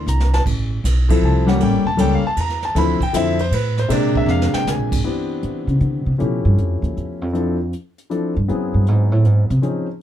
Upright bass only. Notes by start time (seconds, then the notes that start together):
0.06 C2
0.46 A1
0.84 B1
1.22 C2
1.60 A1
1.73 G1
1.85 E1
1.98 C#2
2.23 muted upright bass stroke
2.37 E2
2.75 D2
3.01 muted upright bass stroke
3.14 F2
3.51 A2
3.89 A#2
4.26 F2
4.54 muted upright bass stroke
4.65 D2
4.78 A#1
4.91 G#1
5.43 E3
5.67 C#3
5.81 D3
6.06 C3
6.20 B2
6.45 G2
6.58 F2
6.82 D#2
6.97 E2
7.22 F2
8.37 G2
8.50 F#2
8.74 G2
8.88 G#2
9.12 A2
9.25 G#2
9.50 C3